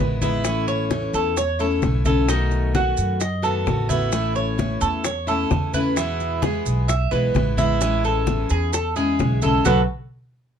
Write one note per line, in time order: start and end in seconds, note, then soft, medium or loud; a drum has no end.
0.00 1.07 A1 medium
0.00 0.20 D#3 soft
0.00 0.21 G#3 soft
0.00 0.21 B3 soft
0.00 0.21 E4 soft
0.00 0.20 B4 medium
0.00 high conga medium
0.22 0.44 D#3 medium
0.22 0.44 G#3 medium
0.22 0.44 B3 medium
0.22 0.66 E4 medium
0.22 0.44 E4 medium
0.22 high bongo soft
0.22 high conga medium
0.22 maracas medium
0.44 0.89 E3 medium
0.44 0.90 A3 medium
0.44 0.90 C#4 medium
0.44 0.90 E4 medium
0.44 high bongo medium
0.44 high conga soft
0.44 maracas medium
0.68 1.12 C#5 medium
0.68 high conga soft
0.68 maracas soft
0.90 1.35 E3 medium
0.90 1.35 A3 medium
0.90 1.36 C#4 soft
0.90 1.36 E4 medium
0.90 high bongo medium
0.90 high conga medium
0.90 maracas soft
1.14 1.78 E2 loud
1.14 1.36 A4 medium
1.14 high conga soft
1.14 maracas medium
1.36 1.59 C#5 medium
1.36 muted steel-string acoustic guitar stroke medium
1.36 high bongo medium
1.36 high conga soft
1.36 maracas medium
1.59 1.81 A3 soft
1.59 1.82 C#4 medium
1.59 1.81 E4 medium
1.59 2.04 A4 medium
1.59 high conga soft
1.59 maracas soft
1.82 2.91 B1 medium
1.82 2.04 E3 soft
1.82 2.04 A3 soft
1.82 2.05 C#4 soft
1.82 2.04 E4 soft
1.82 high bongo medium
1.82 low bongo medium
1.82 high conga medium
1.82 maracas soft
2.05 2.28 A3 medium
2.05 2.28 C#4 medium
2.05 2.27 E4 medium
2.05 2.28 A4 medium
2.05 high conga medium
2.05 maracas medium
2.28 2.73 B2 medium
2.28 2.74 D#3 medium
2.28 2.74 A3 medium
2.28 2.74 B3 medium
2.28 2.73 D#4 medium
2.28 2.74 F#4 medium
2.28 high bongo medium
2.28 maracas medium
2.51 high bongo soft
2.51 high conga soft
2.51 maracas soft
2.75 3.19 D#3 soft
2.75 3.19 A3 medium
2.75 3.19 B3 medium
2.75 3.19 F#4 medium
2.75 3.20 F#4 medium
2.75 high bongo medium
2.75 high conga medium
2.75 maracas soft
2.97 3.63 F#2 medium
2.97 high conga soft
2.97 maracas medium
3.20 3.43 D#5 medium
3.20 muted steel-string acoustic guitar stroke medium
3.20 high bongo medium
3.20 high conga soft
3.20 maracas medium
3.42 3.65 D#3 medium
3.42 3.65 A3 medium
3.42 3.65 B3 medium
3.42 3.65 F#4 medium
3.42 3.88 A4 medium
3.42 high bongo soft
3.42 high conga soft
3.42 maracas soft
3.66 4.75 A1 medium
3.66 3.88 D#3 soft
3.66 3.88 A3 soft
3.66 3.89 B3 soft
3.66 3.89 F#4 medium
3.66 high bongo medium
3.66 low bongo medium
3.66 high conga medium
3.66 maracas soft
3.89 4.11 D#3 medium
3.89 4.11 A3 medium
3.89 4.12 B3 medium
3.89 4.34 E4 medium
3.89 4.12 F#4 medium
3.89 high bongo soft
3.89 high conga medium
3.89 maracas medium
4.12 4.56 E3 medium
4.12 4.57 A3 medium
4.12 4.58 C#4 medium
4.12 4.58 E4 medium
4.12 high bongo medium
4.12 maracas medium
4.35 4.80 C#5 medium
4.35 high conga soft
4.35 maracas soft
4.58 5.03 E3 soft
4.58 5.04 A3 soft
4.58 5.04 C#4 medium
4.58 5.04 E4 medium
4.58 high bongo medium
4.58 high conga medium
4.58 maracas soft
4.81 5.47 E2 medium
4.81 5.04 A4 medium
4.81 maracas medium
5.04 5.27 C#5 medium
5.04 muted steel-string acoustic guitar stroke medium
5.04 high bongo medium
5.04 high conga soft
5.04 maracas medium
5.27 5.50 A3 medium
5.27 5.50 C#4 medium
5.27 5.49 E4 medium
5.27 5.72 A4 medium
5.27 high conga soft
5.27 maracas soft
5.51 6.59 E2 medium
5.51 5.73 E3 soft
5.51 5.72 E4 soft
5.51 high bongo medium
5.51 low bongo medium
5.51 high conga medium
5.51 maracas soft
5.74 5.97 A3 medium
5.74 5.96 C#4 medium
5.74 5.96 E4 medium
5.74 5.96 B4 medium
5.74 high conga medium
5.74 maracas medium
5.96 6.42 B2 medium
5.96 6.41 E3 medium
5.96 6.42 G#3 medium
5.96 6.42 B3 medium
5.96 6.41 E4 medium
5.96 6.42 E4 medium
5.96 high bongo medium
5.96 high conga soft
5.96 maracas medium
6.20 high bongo soft
6.20 high conga soft
6.20 maracas soft
6.42 6.88 E3 soft
6.42 6.88 G#3 medium
6.42 6.88 B3 medium
6.42 6.88 E4 medium
6.42 6.87 G#4 medium
6.42 high bongo medium
6.42 high conga medium
6.42 maracas soft
6.65 7.08 B1 medium
6.65 maracas medium
6.88 7.11 E5 medium
6.88 muted steel-string acoustic guitar stroke medium
6.88 high bongo medium
6.88 maracas medium
7.11 7.33 B1 medium
7.11 7.33 E3 medium
7.11 7.34 G#3 medium
7.11 7.34 B3 medium
7.11 7.33 E4 medium
7.11 7.56 B4 medium
7.11 high bongo soft
7.11 high conga soft
7.11 maracas soft
7.34 8.44 A1 medium
7.34 7.56 E3 soft
7.34 7.57 G#3 soft
7.34 7.57 B3 medium
7.34 7.56 E4 medium
7.34 high bongo medium
7.34 low bongo medium
7.34 high conga medium
7.34 maracas soft
7.57 7.79 E3 medium
7.57 7.80 G#3 medium
7.57 7.80 B3 medium
7.57 7.79 E4 medium
7.57 8.03 E4 medium
7.57 high bongo soft
7.57 high conga medium
7.57 maracas medium
7.80 8.25 E3 medium
7.80 8.25 G#3 medium
7.80 8.26 C#4 medium
7.80 8.27 E4 medium
7.80 high bongo medium
7.80 maracas medium
8.03 8.49 A4 medium
8.03 high conga soft
8.03 maracas soft
8.26 8.71 E3 soft
8.26 8.72 G#3 medium
8.26 8.72 C#4 medium
8.26 8.73 E4 medium
8.26 high bongo medium
8.26 high conga medium
8.26 maracas soft
8.50 9.15 E2 loud
8.50 8.73 G#4 medium
8.50 high conga soft
8.50 maracas medium
8.73 8.95 A4 medium
8.73 muted steel-string acoustic guitar stroke medium
8.73 high bongo medium
8.73 high conga soft
8.73 maracas loud
8.96 9.18 G#3 medium
8.96 9.18 C#4 medium
8.96 9.18 E4 medium
8.96 9.41 G#4 medium
8.96 high conga soft
8.96 maracas soft
9.19 9.62 B1 medium
9.19 9.41 E3 soft
9.19 9.41 G#3 soft
9.19 9.41 C#4 soft
9.19 9.41 E4 medium
9.19 high bongo medium
9.19 low bongo medium
9.19 high conga medium
9.19 maracas soft
9.42 9.65 G#3 medium
9.42 9.64 C#4 medium
9.42 9.64 E4 medium
9.42 9.64 A4 medium
9.42 high conga medium
9.42 maracas medium
9.65 9.82 B1 medium
9.65 9.80 F#3 loud
9.65 9.80 A3 medium
9.65 9.80 B3 medium
9.65 9.80 F#4 medium
9.65 9.80 A4 medium
9.65 9.80 B4 medium
9.65 low bongo medium
9.65 high conga loud
9.65 maracas medium